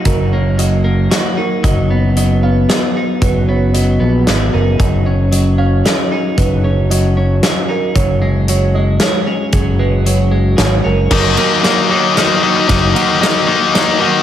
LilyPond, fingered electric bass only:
\new Staff \with { instrumentName = "Fingered electric bass" } { \clef bass \time 3/4 \key dis \minor \tempo 4 = 114 fis,,2 r4 | fis,,2 r4 | fis,,4. ais,,8 gis,,8 fis,,8 | fis,,2 r4 |
fis,,2 r4 | fis,,2 r4 | fis,,2 gis,,8 fis,,8 | r2. |
fis,,8 r2 r8 | }